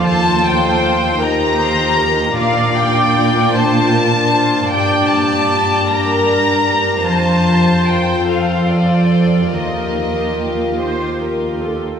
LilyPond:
<<
  \new Staff \with { instrumentName = "Violin section" } { \time 6/8 \key ees \lydian \tempo 4. = 51 a''8 g''4 bes''4. | f''8 g''4 a''4. | g''8 a''4 bes''4. | a''4 g''8 f''8 d''4 |
ees''4. r4. | }
  \new Staff \with { instrumentName = "Viola section" } { \time 6/8 \key ees \lydian c''4. bes'8 c''8 bes'8 | d''4. c''8 bes'8 c''8 | d''4. bes'4. | c''4. a'4. |
bes'4. c''8 bes'8 a'8 | }
  \new Staff \with { instrumentName = "Violin section" } { \time 6/8 \key ees \lydian << { a'4. g'4. | f'2. | g'2. | c''2. |
g'2~ g'8. r16 | } \\ { f'4. ees'4. | d'2.~ | d'2. | f'2.~ |
f'2~ f'8. r16 | } >> }
  \new Staff \with { instrumentName = "Harp" } { \time 6/8 \key ees \lydian <ees f'>8 bes8 f'8 g'8 bes'8 g'8 | bes,8 bes8 d'8 f'8 bes'8 f'8 | g,8 bes4 g'8 bes'8 g'8 | f8 f'4 f'8 f''8 c''8 |
ees8 ees'8 f'8 g'8 ees''8 g'8 | }
  \new Staff \with { instrumentName = "Cello section" } { \clef bass \time 6/8 \key ees \lydian ees,2. | bes,2. | g,2. | f,2. |
ees,2~ ees,8. r16 | }
>>